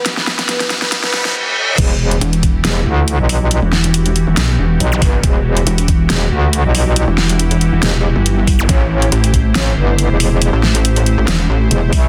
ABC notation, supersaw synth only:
X:1
M:4/4
L:1/8
Q:"Swing 16ths" 1/4=139
K:Em
V:1 name="Supersaw synth"
[B,B]2 [B,B]2 [B,B] [B,B] z2 | z8 | z8 | z8 |
z8 | z8 | z8 |]